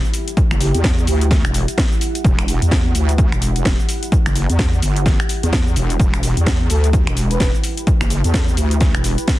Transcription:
Already playing: ambient pad E4 G4 F#5
0.05 cabasa
0.14 open hi-hat, cabasa
0.28 closed hi-hat, cabasa
0.37 kick, closed hi-hat, cabasa
0.51 wobble bass F#1, finger snap, cabasa
0.61 soft synth lead G4, open hi-hat, cabasa
0.75 wobble bass E2, closed hi-hat, cabasa
0.84 kick, snare, closed hi-hat, cabasa
0.99 cabasa
1.07 wobble bass D2, soft synth lead G4, open hi-hat, cabasa
1.21 soft synth lead G4, closed hi-hat, cabasa
1.31 kick, snare, closed hi-hat, cabasa
1.45 wobble bass E1, finger snap, cabasa
1.54 open hi-hat, cabasa
1.68 closed hi-hat, cabasa
1.78 kick, snare, closed hi-hat, cabasa
1.92 cabasa
2.01 open hi-hat, cabasa
2.15 closed hi-hat, cabasa
2.25 wobble bass E1, kick, closed hi-hat, cabasa
2.39 finger snap, cabasa
2.48 open hi-hat, cabasa
2.62 wobble bass E2, closed hi-hat, cabasa
2.71 kick, snare, closed hi-hat, cabasa
2.95 wobble bass D2, open hi-hat, cabasa
3.09 closed hi-hat, cabasa
3.18 kick, closed hi-hat, cabasa
3.32 wobble bass E1, finger snap, cabasa
3.42 open hi-hat, cabasa
3.56 closed hi-hat, cabasa
3.65 wobble bass E1, kick, snare, closed hi-hat, cabasa
3.80 cabasa
3.89 open hi-hat, cabasa
4.03 closed hi-hat, cabasa
4.12 kick, closed hi-hat, cabasa
4.26 wobble bass F#1, finger snap, cabasa
4.36 open hi-hat, cabasa
4.50 wobble bass E2, closed hi-hat, cabasa
4.59 kick, snare, closed hi-hat, cabasa
4.74 cabasa
4.82 wobble bass G1, open hi-hat, cabasa
4.96 closed hi-hat, cabasa
5.06 kick, snare, closed hi-hat, cabasa
5.20 finger snap, cabasa
5.29 open hi-hat, cabasa
5.43 wobble bass E2, closed hi-hat, cabasa
5.53 kick, snare, closed hi-hat, cabasa
5.67 cabasa
5.76 wobble bass E1, open hi-hat, cabasa
5.90 closed hi-hat, cabasa
6.00 wobble bass E1, kick, closed hi-hat, cabasa
6.14 finger snap, cabasa
6.23 open hi-hat, cabasa
6.37 wobble bass E2, closed hi-hat, cabasa
6.46 kick, snare, closed hi-hat, cabasa
6.70 wobble bass D2, soft synth lead A4, open hi-hat, cabasa
6.84 closed hi-hat, cabasa
6.92 ambient pad B4, kick, closed hi-hat, cabasa
7.07 wobble bass E1, finger snap, cabasa
7.17 open hi-hat, cabasa
7.31 soft synth lead B4, closed hi-hat, cabasa
7.40 wobble bass E1, kick, snare, closed hi-hat, cabasa
7.55 cabasa
7.64 open hi-hat, cabasa
7.77 closed hi-hat, cabasa
7.87 kick, closed hi-hat, cabasa
8.01 wobble bass F#1, finger snap, cabasa
8.10 open hi-hat, cabasa
8.24 wobble bass E2, soft synth lead A4, closed hi-hat, cabasa
8.34 soft synth lead A4, kick, snare, closed hi-hat, cabasa
8.49 cabasa
8.57 wobble bass D2, open hi-hat, cabasa
8.71 closed hi-hat, cabasa
8.81 kick, snare, closed hi-hat, cabasa
8.95 wobble bass E1, finger snap, cabasa
9.04 open hi-hat, cabasa
9.18 closed hi-hat, cabasa
9.28 kick, snare, closed hi-hat, cabasa

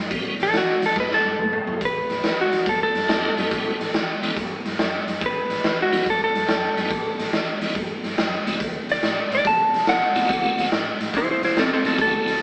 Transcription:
0.11 fingered electric bass A1, tonewheel organ G3 B3 C#4 F#4, kick, closed hi-hat
0.39 fingered electric bass A1, electric slide guitar A4, snare, closed hi-hat
0.53 fingered electric bass E2, electric slide guitar F#4, snare, closed hi-hat
0.82 fingered electric bass E2, snare, closed hi-hat
0.86 electric slide guitar A4
0.96 fingered electric bass G2, electric slide guitar B4, kick, snare
1.11 electric slide guitar A4, snare
1.25 fingered electric bass G2
1.39 fingered electric bass F#2, mid tom
1.53 mid tom
1.67 fingered electric bass F#2, floor tom
1.81 fingered electric bass A1, kick, closed hi-hat
1.85 electric slide guitar B4
2.10 fingered electric bass A1, snare, closed hi-hat
2.23 fingered electric bass E2, snare, closed hi-hat
2.41 electric slide guitar F#4
2.52 fingered electric bass E2, snare, closed hi-hat
2.66 fingered electric bass G2, electric slide guitar A4, kick, closed hi-hat
2.83 electric slide guitar A4
2.95 fingered electric bass G2, snare, closed hi-hat
3.08 fingered electric bass F#2, tonewheel organ F#3 A#3 C4 D#4 F4, snare, closed hi-hat
3.37 fingered electric bass F#2, tonewheel organ G3 B3 C#4 E4 F#4, snare, closed hi-hat
3.50 fingered electric bass A1, tonewheel organ G3 B3 C#4 E4 F#4, kick, snare, closed hi-hat
3.81 fingered electric bass A1, snare, closed hi-hat
3.94 fingered electric bass E2, snare, closed hi-hat
4.22 fingered electric bass E2, tonewheel organ G3 B3 C#4 E4 A4, snare, closed hi-hat
4.37 fingered electric bass G2, kick, closed hi-hat
4.65 fingered electric bass G2, snare, closed hi-hat
4.79 fingered electric bass F#2, snare, closed hi-hat
5.07 fingered electric bass F#2, snare, closed hi-hat
5.21 fingered electric bass A1, kick, closed hi-hat
5.26 electric slide guitar B4
5.50 fingered electric bass A1, snare, closed hi-hat
5.64 fingered electric bass E2, snare, closed hi-hat
5.82 electric slide guitar F#4
5.92 fingered electric bass E2, tonewheel organ G3 B3 C#4 E4 F#4, snare, closed hi-hat
6.06 fingered electric bass G2, electric slide guitar A4, kick, snare, closed hi-hat
6.24 electric slide guitar A4
6.35 fingered electric bass G2, snare, closed hi-hat
6.48 fingered electric bass F#2, snare, closed hi-hat
6.77 fingered electric bass F#2, tonewheel organ G3 B3 C#4 E4 F#4, snare, closed hi-hat
6.91 fingered electric bass A1, kick, snare, closed hi-hat
7.19 fingered electric bass A1, snare, closed hi-hat
7.33 fingered electric bass E2, snare, closed hi-hat
7.60 fingered electric bass E2, tonewheel organ G3 B3 C#4 E4 F#4, snare, closed hi-hat
7.75 fingered electric bass G2, kick, closed hi-hat
8.04 fingered electric bass G2, snare, closed hi-hat
8.17 fingered electric bass F#2, snare, closed hi-hat
8.45 fingered electric bass C#2, tonewheel organ A3 B3 C4 E4 F#4, snare, closed hi-hat
8.60 fingered electric bass D2, kick, closed hi-hat
8.89 fingered electric bass D2, electric slide guitar D5, snare, closed hi-hat
9.03 fingered electric bass A2, snare, closed hi-hat
9.30 fingered electric bass A2, snare, closed hi-hat
9.35 electric slide guitar D5
9.45 fingered electric bass C3, electric slide guitar A5, kick, closed hi-hat
9.73 fingered electric bass C3, snare, closed hi-hat
9.87 fingered electric bass B2, electric slide guitar F#5, snare, closed hi-hat
10.15 fingered electric bass B2, tonewheel organ A3 B3 C4 E4 F#4, snare, closed hi-hat
10.29 fingered electric bass D2, kick, closed hi-hat
10.58 fingered electric bass D2, snare, closed hi-hat
10.72 fingered electric bass A2, snare, closed hi-hat
11.00 fingered electric bass A2, snare, closed hi-hat
11.14 fingered electric bass C3, electric slide guitar E4 C5, kick, closed hi-hat
11.31 electric slide guitar E4 C5
11.42 fingered electric bass C3, electric slide guitar E4 C5, snare, closed hi-hat
11.56 fingered electric bass B2, electric slide guitar C4 A4, snare, closed hi-hat
11.73 electric slide guitar C4 A4
11.84 fingered electric bass B2, tonewheel organ A3 B3 C4 E4 F#4, electric slide guitar C4 A4, snare, closed hi-hat
11.98 fingered electric bass D2, electric slide guitar A4, kick, closed hi-hat
12.26 fingered electric bass D2, snare, closed hi-hat

